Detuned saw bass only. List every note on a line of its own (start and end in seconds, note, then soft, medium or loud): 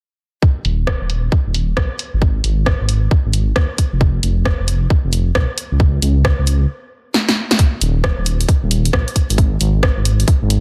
0.65 0.96 D#1 medium
1.02 1.29 D#1 medium
1.47 1.74 D#1 medium
1.77 1.88 A#1 medium
2.14 2.41 G#1 medium
2.44 2.75 G#1 loud
2.81 3.08 G#1 medium
3.26 3.53 G#1 medium
3.56 3.67 D#2 medium
3.93 4.20 F1 loud
4.23 4.54 F1 loud
4.60 4.87 F1 medium
5.05 5.32 F1 medium
5.35 5.46 B1 medium
5.72 5.99 C#2 medium
6.02 6.33 C#2 medium
6.39 6.66 C#2 medium
7.81 8.12 D#1 medium
8.18 8.45 D#1 medium
8.63 8.90 D#1 medium
8.93 9.04 A#1 medium
9.30 9.57 G#1 loud
9.60 9.91 G#1 loud
9.97 10.24 G#1 medium
10.42 10.60 G#1 medium